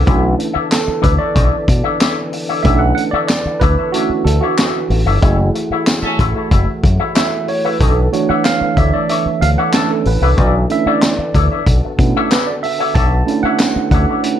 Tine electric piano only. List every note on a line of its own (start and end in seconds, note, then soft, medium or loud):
0.06 0.49 A3 medium
0.06 0.49 C#4 soft
0.06 0.50 D4 soft
0.06 0.50 E4 medium
0.71 1.01 A4 medium
1.03 1.10 B4 medium
1.18 2.60 D5 medium
2.63 3.07 A3 soft
2.63 3.07 C#4 soft
2.63 3.07 D4 soft
2.63 3.08 E4 medium
2.63 2.80 E5 medium
2.79 2.94 F#5 medium
2.95 3.03 F#5 loud
3.11 3.19 D5 loud
3.27 3.61 D5 loud
3.60 3.94 B4 loud
3.92 4.22 A3 soft
3.92 4.23 C#4 soft
3.92 4.23 D4 soft
3.92 4.23 E4 medium
3.92 4.26 F#4 medium
4.25 4.42 A4 medium
4.41 5.02 F#4 medium
5.21 7.76 A3 soft
5.21 7.76 E4 medium
5.21 7.76 G#4 medium
7.16 7.46 E5 medium
7.49 7.65 C#5 medium
7.65 7.81 B4 medium
7.80 8.10 A4 medium
8.12 10.67 E3 medium
8.12 9.72 A3 medium
8.12 9.73 D4 medium
8.12 8.29 F#4 medium
8.12 10.66 C#5 medium
8.29 8.44 F#5 loud
8.45 8.78 F5 loud
8.77 8.94 E5 loud
8.94 9.10 D5 medium
9.10 9.43 E5 medium
9.41 9.49 F5 loud
9.58 9.74 F#5 loud
9.74 10.03 A3 medium
9.74 10.03 C#4 medium
9.74 10.03 D4 soft
9.74 10.03 E4 medium
9.74 9.91 A5 loud
9.91 10.07 A4 medium
10.07 10.22 B4 medium
10.23 10.30 B4 medium
10.39 10.54 D5 medium
10.70 11.13 A3 medium
10.70 11.13 C#4 medium
10.70 11.13 D4 medium
10.70 11.13 E4 medium
10.70 10.88 E5 loud
10.88 11.79 D5 medium
11.98 12.27 A3 medium
11.98 12.28 C#4 soft
11.98 12.28 D4 soft
11.98 12.28 E4 medium
12.31 12.48 B4 loud
12.47 12.54 D5 medium
12.63 12.96 E5 loud
12.95 13.40 A5 loud
13.26 14.19 A3 medium
13.26 14.19 C#4 medium
13.26 14.19 D4 medium
13.26 14.19 E4 medium
13.43 13.88 F#5 loud
13.91 14.40 F#5 medium
14.23 14.40 A3 soft
14.23 14.40 C#4 soft
14.23 14.40 D4 soft
14.23 14.40 E4 soft